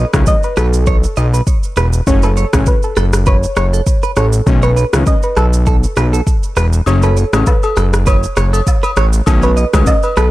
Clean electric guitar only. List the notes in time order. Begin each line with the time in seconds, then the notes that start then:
0.57 B4
0.87 C#5
1.17 D#5
1.34 B4
1.77 B4
2.23 B4
2.37 C#5
2.97 A4
3.27 B4
3.57 C#5
3.73 A4
4.03 B4
4.17 C#5
4.63 C#5
4.77 B4
5.37 A4
5.67 A4
5.97 B4
6.13 A4
6.57 B4
7.03 B4
7.17 C#5
7.77 A4
8.07 B4
8.37 C#5
8.53 A4
8.83 B4
8.97 C#5
9.43 C#5
9.57 D#5
10.17 B4